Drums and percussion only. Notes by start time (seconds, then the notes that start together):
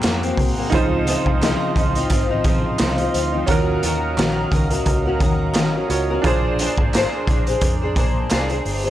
0.02 snare, clap, closed hi-hat
0.23 closed hi-hat
0.37 kick, open hi-hat
0.72 kick, closed hi-hat
1.07 closed hi-hat
1.26 kick
1.42 snare, clap, closed hi-hat
1.76 kick, closed hi-hat
1.95 closed hi-hat
2.10 kick, snare, closed hi-hat
2.44 kick, closed hi-hat
2.78 snare, clap, closed hi-hat
2.98 closed hi-hat
3.14 closed hi-hat
3.47 kick, closed hi-hat
3.83 closed hi-hat
4.18 snare, clap, closed hi-hat
4.52 kick, closed hi-hat
4.71 closed hi-hat
4.86 kick, closed hi-hat
5.20 kick, closed hi-hat
5.54 snare, clap, closed hi-hat
5.90 closed hi-hat
6.24 kick, closed hi-hat
6.59 closed hi-hat
6.78 kick
6.94 snare, clap, closed hi-hat
7.27 kick, closed hi-hat
7.47 closed hi-hat
7.61 kick, closed hi-hat
7.96 kick, closed hi-hat
8.30 snare, clap, closed hi-hat
8.50 closed hi-hat
8.66 open hi-hat